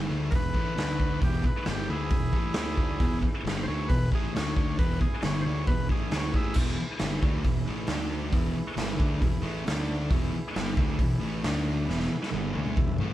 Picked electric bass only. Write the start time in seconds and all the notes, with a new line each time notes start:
0.10 D2
0.32 E1
0.54 A1
0.77 D2
1.22 E1
1.44 muted picked electric bass stroke
1.67 G1
1.89 D2
2.11 E1
2.33 A1
2.54 D2
3.00 E1
3.23 muted picked electric bass stroke
3.44 G1
3.67 D2
3.90 E1
4.12 A1
4.33 D2
4.79 E1
5.02 muted picked electric bass stroke
5.23 G1
5.45 D2
5.68 E1
5.89 A1
6.11 D2
6.34 A1
6.56 E1
6.80 muted picked electric bass stroke
7.01 G1
7.22 D2
7.45 E1
7.68 A1
7.88 D2
8.33 E1
8.55 muted picked electric bass stroke
8.77 G1
8.99 D2
9.21 E1
9.44 A1
9.68 D2
10.11 E1
10.33 muted picked electric bass stroke
10.56 G1
10.77 D2
10.99 E1
11.23 A1
11.45 D2
11.89 E1
12.11 muted picked electric bass stroke
12.33 G1
12.56 D2
12.77 E1
13.00 A1